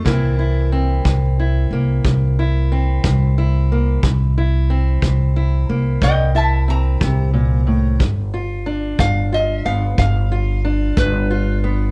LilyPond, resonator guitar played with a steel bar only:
\new Staff \with { instrumentName = "Resonator guitar played with a steel bar" } { \time 12/8 \key c \mixolydian \tempo 4. = 60 a''4 r1 r4 | r2. <ees'' g''>8 <e'' a''>8 bes''2 | r4. f''8 ees''8 f''8 f''4. b'4. | }